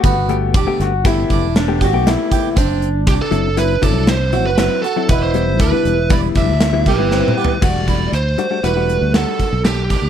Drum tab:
CC |------------------------------|------------------------------|------------------------------|x-----------------------------|
HH |x--x--x--x--x--x--x--x--x--x--|x--x--x--x--x--x--x--x--x--x--|x--x--x--x--x--x--x--x--------|---x--x--x--x--x--x--x--x--x--|
SD |---------o--o-----o-----o-----|------o-----o-----o-----o-----|------------------o-----o-----|------------o-----o-----o--o--|
T2 |------------------------------|------------------------------|--------------------------o---|------------------------------|
FT |------------------------------|------------------------------|----------------------------o-|------------------------------|
BD |o-----o-----o--o-----o-----o--|o-----o--------o--------------|o-----o-----o--o-----o--------|o--o-----------------o-----o--|